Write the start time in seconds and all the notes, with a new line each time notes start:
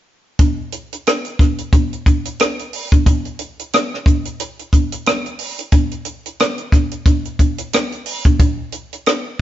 0.39 kick, closed hi-hat
0.72 closed hi-hat
0.93 closed hi-hat
1.07 cross-stick, closed hi-hat
1.25 closed hi-hat
1.39 kick, cross-stick, closed hi-hat
1.58 closed hi-hat
1.73 kick, closed hi-hat
1.93 closed hi-hat
2.06 kick, closed hi-hat
2.25 closed hi-hat
2.40 cross-stick, closed hi-hat
2.59 closed hi-hat
2.73 open hi-hat
2.92 kick, closed hi-hat
3.06 kick, closed hi-hat
3.25 closed hi-hat
3.39 closed hi-hat
3.59 closed hi-hat
3.73 cross-stick, closed hi-hat
3.94 cross-stick
4.06 kick, closed hi-hat
4.25 closed hi-hat
4.40 closed hi-hat
4.59 closed hi-hat
4.73 kick, closed hi-hat
4.92 closed hi-hat
5.06 cross-stick, closed hi-hat
5.26 closed hi-hat
5.39 open hi-hat
5.59 closed hi-hat
5.72 kick, closed hi-hat
5.91 closed hi-hat
6.05 closed hi-hat
6.26 closed hi-hat
6.40 cross-stick, closed hi-hat
6.58 closed hi-hat
6.72 kick, cross-stick, closed hi-hat
6.91 closed hi-hat
7.06 kick, closed hi-hat
7.25 closed hi-hat
7.39 kick, closed hi-hat
7.58 closed hi-hat
7.73 cross-stick, closed hi-hat
7.92 closed hi-hat
8.06 open hi-hat
8.25 kick, closed hi-hat
8.39 kick, closed hi-hat
8.72 closed hi-hat
8.93 closed hi-hat
9.06 cross-stick, closed hi-hat